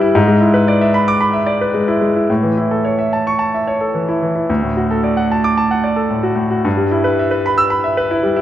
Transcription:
Already playing: G2 G3 B4 E5 B5 E6
0.00 E4
0.15 G#2
0.28 G#3
0.41 E4
0.54 B4
0.68 D5
0.81 E5
0.94 B5
1.08 D6
1.21 B5
1.33 E5
1.46 D5
1.61 B4
1.74 G#3
1.88 E4
2.01 G#3
2.16 E4
2.30 A2
2.43 E3
2.57 E4
2.71 A4
2.85 C#5
2.99 E5
3.13 A5
3.27 C#6
3.39 A5
3.54 E5
3.67 C#5
3.81 A4
3.94 E3
4.09 E4
4.22 E3
4.35 E4
4.49 D2
4.63 A2
4.77 F#4
4.91 A4
5.04 D5
5.17 F#5
5.32 A5
5.44 D6
5.57 A5
5.71 F#5
5.84 D5
5.96 A4
6.10 A2
6.23 F#4
6.35 A2
6.51 F#4
6.65 G2
6.77 G3
6.91 E4
7.04 B4
7.19 E5
7.31 B4
7.46 B5
7.58 E6
7.70 B5
7.84 E5
7.97 B4
8.11 E4
8.23 G3
8.36 E4

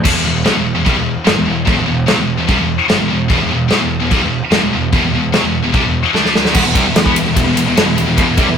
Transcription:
0.04 E1 E2 B2, kick, china, crash
0.14 E1 E2 B2
0.25 E1 E2 B2
0.45 B1 B2 F#3, snare, china
0.55 E1 E2 B2
0.75 E1 E2 B2
0.84 C2 C3 G3, kick, china
0.95 E1 E2 B2
1.25 G1 G2 D3, snare, china
1.35 E1 E2 B2
1.45 E1 E2 B2
1.65 E1 E2 B2, kick, china
1.75 E1 E2 B2
1.86 E1 E2 B2
2.06 B1 B2 F#3, snare, china
2.16 E1 E2 B2
2.37 E1 E2 B2
2.47 C2 C3 G3, kick, china
2.57 E1 E2 B2
2.88 G1 G2 D3, snare, china
2.98 E1 E2 B2
3.08 E2 B2
3.12 E1
3.28 E1 E2 B2, kick, china
3.38 E1 E2 B2
3.49 E1 E2 B2
3.68 B1 B2 F#3, snare, china
3.79 E1 E2 B2
4.00 E1 E2 B2
4.10 C2 C3 G3, kick, china
4.21 E1 E2 B2
4.51 G1 G2 D3, snare, china
4.61 E1 E2 B2
4.72 E1 E2 B2
4.92 E1 E2 B2, kick, china
5.03 E1 E2 B2
5.13 E1 E2 B2
5.32 B1 B2 F#3, snare, china
5.43 E1 E2 B2
5.63 E1 E2 B2
5.72 C2 C3 G3, kick, china
5.83 E1 E2 B2
6.13 D2 D3 A3 D4, snare
6.25 snare
6.35 snare
6.45 snare
6.52 E1 E2 B2 G3 E4 B4, kick, crash
6.64 E1 E2 B2
6.74 C2 C3 G3, kick, ride
6.85 E1 E2 B2
6.94 E1 E2 B2, snare, ride
7.05 E2 E3 B3, kick
7.14 E1 E2 B2, ride
7.24 E1 E2 B2
7.34 E1 E2 B2, kick, ride
7.44 E1 E2 B2
7.54 E1 E2 B2, ride
7.65 E1 E2 B2
7.75 G1 G2 D3, snare, ride
7.86 E1 E2 B2
7.96 E1 E2 B2, ride
8.06 E1 E2 B2
8.17 E1 E2 B2, kick, ride
8.27 E1 E2 B2
8.37 C2 C3 G3, kick, ride
8.47 E1 E2 B2

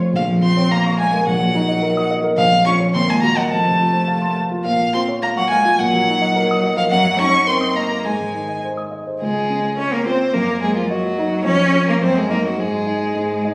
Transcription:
Already playing: F2 A3 F4
0.00 C5
0.13 A#1 F3 F5
0.29 F2
0.42 C4 F4 C6
0.57 C#5
0.71 A#3 F5 A#5
0.86 C#6
0.99 G#3 F5 G#5
1.13 A#4
1.27 A#1 F#3 F#5
1.41 A#2
1.55 D#4
1.68 D#5
1.83 A#4
1.97 D#6
2.11 D#5
2.24 A#4
2.37 A#1 F3 F5
2.52 F2
2.66 C#4 F4 C#6
2.80 C#5
2.94 D#2 C4 C6
3.09 A#2 G#3 G#5
3.22 A#3 F#4 A#5
3.36 F#3 D#5 F#5
3.51 F2 A3 A5
3.65 C3
3.80 F4
3.93 C5
4.08 F5
4.22 C6
4.36 F5
4.51 F4
4.65 A#2 F3 F5
4.80 A#3
4.94 C4 F4 C6
5.08 C#5
5.22 A#3 F5 A#5
5.37 F#3 F#5 C#6
5.50 G#3 F5 G#5
5.65 F4
5.78 A#2 F#3 F#5
5.93 F#3
6.08 D#4
6.22 D#5
6.36 A#4
6.51 D#6
6.63 D#5
6.76 F3 A#4 F5
6.91 F#2 F#3 F#5
7.05 F#3
7.18 C#4 D#4 C#6
7.33 D#5
7.47 C4 A#4 C6
7.61 D#6
7.76 A#3 D#5 A#5
7.91 A#4
8.04 G#2 G#3 G#5
8.20 D#3
8.34 D#4
8.49 D#5
8.64 C5
8.77 D#6
8.91 D#5
9.07 C5
9.20 C#2 G#3 G#4
9.50 C#4
9.77 C#4 C#5
9.93 A#3 A#4
10.05 C4 F4 C5
10.33 F#2 A#3 A#4
10.62 G#3 A#3 G#4
10.76 F3 F4
10.90 F#3 F#4 D#5
11.18 D#4
11.45 F2 C#4 C#5
11.72 F4 C#5
11.88 A#3 A#4
12.01 F#2 C4 C5
12.17 G#3 G#4
12.29 A#3 D#4 A#4 D#5
12.45 F#3 F#4
12.58 G#2 G#3 G#4
12.86 D#4 D#5
13.15 G#2
13.44 D#4 D#5

